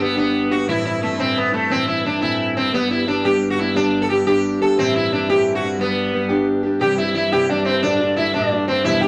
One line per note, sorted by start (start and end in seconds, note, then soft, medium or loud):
0.00 2.71 G2 medium
0.00 0.16 G3 medium
0.00 0.16 B3 medium
0.00 0.15 D4 medium
0.00 0.14 G4 medium
0.16 0.51 G3 medium
0.16 0.51 B3 medium
0.16 0.52 B3 medium
0.16 0.51 D4 medium
0.16 0.48 G4 medium
0.50 0.67 B3 soft
0.50 0.68 D4 soft
0.50 0.67 F#4 medium
0.50 0.67 G4 soft
0.66 1.01 A2 medium
0.66 1.00 E3 medium
0.66 1.02 A3 medium
0.66 1.01 C4 medium
0.66 1.02 E4 medium
0.66 0.84 E4 loud
0.85 1.02 E4 medium
1.01 1.18 E3 medium
1.01 1.20 A3 medium
1.01 1.17 A3 medium
1.01 1.18 C4 medium
1.01 1.16 E4 medium
1.18 1.53 A2 soft
1.18 1.53 E3 medium
1.18 1.52 A3 medium
1.18 1.53 C4 medium
1.18 1.37 C4 medium
1.18 1.51 E4 medium
1.37 1.53 B3 medium
1.52 1.69 A3 soft
1.52 1.71 A3 medium
1.52 1.69 C4 soft
1.52 1.69 E4 medium
1.69 2.04 A2 medium
1.69 2.01 E3 medium
1.69 2.04 A3 medium
1.69 2.03 C4 medium
1.69 1.86 C4 medium
1.69 2.04 E4 medium
1.88 2.03 E4 medium
2.03 2.20 E3 soft
2.03 2.20 A3 medium
2.03 2.20 C4 medium
2.03 2.21 D4 medium
2.03 2.19 E4 medium
2.20 2.56 A2 soft
2.20 2.56 E3 medium
2.20 2.55 A3 medium
2.20 2.55 C4 medium
2.20 2.53 E4 medium
2.54 2.72 A3 soft
2.54 2.72 C4 medium
2.54 2.72 C4 soft
2.54 2.72 E4 soft
2.71 6.80 G2 medium
2.71 3.04 G3 medium
2.71 3.05 B3 medium
2.71 2.90 B3 medium
2.71 3.06 D4 medium
2.71 3.07 G4 medium
2.91 3.06 E4 medium
3.05 3.23 G3 medium
3.05 3.23 B3 medium
3.05 3.22 D4 medium
3.05 3.25 D4 medium
3.05 3.21 G4 medium
3.23 3.58 G3 medium
3.23 3.58 B3 medium
3.23 3.57 D4 medium
3.23 3.55 G4 medium
3.23 3.48 G4 medium
3.50 3.58 F#4 medium
3.57 3.73 B3 soft
3.57 3.74 D4 soft
3.57 3.76 E4 medium
3.57 3.74 G4 soft
3.74 4.07 G3 medium
3.74 4.08 B3 medium
3.74 4.09 D4 medium
3.74 4.02 D4 loud
3.74 4.09 G4 medium
4.02 4.09 A4 medium
4.08 4.25 G3 soft
4.08 4.26 B3 medium
4.08 4.25 D4 medium
4.08 4.26 G4 medium
4.08 4.24 G4 medium
4.25 4.61 G3 soft
4.25 4.60 B3 medium
4.25 4.60 D4 medium
4.25 4.58 G4 medium
4.25 4.61 G4 medium
4.59 4.77 B3 soft
4.59 4.77 D4 soft
4.59 4.76 G4 soft
4.59 4.77 A4 medium
4.76 5.11 A2 medium
4.76 5.09 E3 medium
4.76 5.11 A3 medium
4.76 5.11 C4 medium
4.76 4.95 C4 loud
4.76 5.12 E4 medium
4.96 5.11 E4 medium
5.10 5.28 E3 medium
5.10 5.27 A3 medium
5.10 5.28 C4 medium
5.10 5.27 D4 medium
5.10 5.27 E4 medium
5.28 5.63 A2 soft
5.28 5.63 E3 medium
5.28 5.62 A3 medium
5.28 5.63 C4 medium
5.28 5.61 E4 medium
5.28 5.55 G4 medium
5.55 5.78 F#4 medium
5.62 5.79 A3 soft
5.62 5.79 C4 soft
5.62 5.79 E4 soft
5.78 6.11 G3 medium
5.78 6.12 B3 medium
5.78 6.44 B3 medium
5.78 6.13 D4 medium
5.78 6.14 G4 medium
6.12 6.29 G3 soft
6.12 6.30 B3 medium
6.12 6.29 D4 medium
6.12 6.28 G4 medium
6.29 6.65 G3 medium
6.29 6.64 B3 medium
6.29 6.63 D4 medium
6.29 6.62 G4 medium
6.63 6.80 B3 soft
6.63 6.81 D4 soft
6.63 6.80 G4 medium
6.79 9.08 G2 medium
6.79 6.97 C3 medium
6.79 6.98 E3 medium
6.79 6.98 G3 medium
6.79 6.97 C4 medium
6.79 6.95 E4 medium
6.79 6.98 G4 medium
6.79 6.96 G5 medium
6.96 7.14 G3 soft
6.96 7.15 C4 soft
6.96 7.14 E4 soft
6.96 7.13 E4 medium
6.96 7.14 E5 medium
7.14 7.31 E3 medium
7.14 7.31 G3 medium
7.14 7.31 C4 medium
7.14 7.32 E4 medium
7.14 7.30 E4 medium
7.14 7.34 E5 medium
7.31 7.50 C3 soft
7.31 7.47 E3 medium
7.31 7.48 G3 medium
7.31 7.49 C4 medium
7.31 7.49 E4 medium
7.31 7.48 G4 medium
7.31 7.51 G5 medium
7.48 7.66 E3 medium
7.48 7.66 G3 medium
7.48 7.66 C4 medium
7.48 7.64 D4 medium
7.48 7.65 E4 medium
7.48 7.68 D5 medium
7.65 7.82 C4 medium
7.65 7.84 C4 soft
7.65 7.83 E4 soft
7.65 7.83 C5 medium
7.69 7.84 G3 soft
7.83 8.00 D2 medium
7.83 8.00 A2 medium
7.83 8.00 D3 medium
7.83 8.01 A3 medium
7.83 8.14 D4 loud
7.83 8.00 D4 medium
7.83 7.98 F#4 medium
7.83 8.20 D5 medium
7.99 8.16 D3 soft
7.99 8.17 A3 soft
7.99 8.17 D4 soft
7.99 8.17 F#4 medium
8.16 8.34 D3 medium
8.16 8.33 A3 medium
8.16 8.33 D4 medium
8.16 8.33 E4 medium
8.16 8.32 F#4 medium
8.16 8.37 E5 medium
8.34 8.52 D2 medium
8.34 8.52 A2 medium
8.34 8.49 D3 medium
8.34 8.50 A3 medium
8.34 8.67 D4 medium
8.34 8.51 D4 medium
8.34 8.51 F#4 medium
8.34 8.68 D5 medium
8.51 8.68 D3 medium
8.51 8.68 A3 medium
8.51 8.67 D4 medium
8.51 8.66 F#4 medium
8.67 8.85 D3 soft
8.67 8.85 A3 soft
8.67 8.84 C4 medium
8.67 8.85 D4 soft
8.67 8.84 F#4 soft
8.67 8.86 C5 medium
8.84 9.02 E2 medium
8.84 9.02 B2 medium
8.84 9.02 E3 medium
8.84 9.02 G3 medium
8.84 9.01 B3 medium
8.84 9.00 D4 medium
8.84 9.01 E4 loud
8.84 9.03 E5 medium
9.01 9.08 E3 soft
9.01 9.08 G3 soft
9.01 9.08 B3 soft
9.01 9.08 D4 medium
9.01 9.08 G4 medium
9.01 9.08 G5 medium